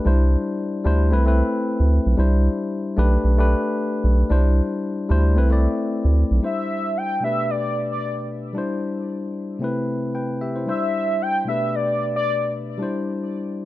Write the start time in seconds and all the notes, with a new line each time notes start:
0.05 C2 G3 D4 E4 C5
0.84 D2 G3 D4 E4 C5
1.11 C2 A3 C4 E4 B4
1.25 A3 C4 E4 B4
1.80 D2
2.06 B1
2.17 C2 G3 D4 E4 C5
2.97 B1 A3 D4 G4 B4
3.24 B1
3.38 A3 D4 G4 B4
4.04 B1
4.29 C2 G3 D4 E4 C5
5.09 D2 G3 D4 E4 C5
5.36 C2 A3 C4 E4 B4
5.50 A3 C4 E4 D5
6.05 D2
6.31 B1
6.42 G3 D4 E4 C5 E5
6.97 G5
7.20 B2 A3 D4 G4 E5
7.25 B4
7.50 D5
7.92 D5
8.53 G3 D4 E4
8.58 C5
9.59 C3 A3 C4 E4
9.64 B4
10.15 B4 G5
10.41 G4 E5
10.56 E4 C5
10.66 G3 D4 E4 C5 E5
11.22 G5
11.45 B2 A3 D4 G4 E5
11.50 B4
11.75 D5
12.16 D5
12.78 G3 D4 E4
12.83 C5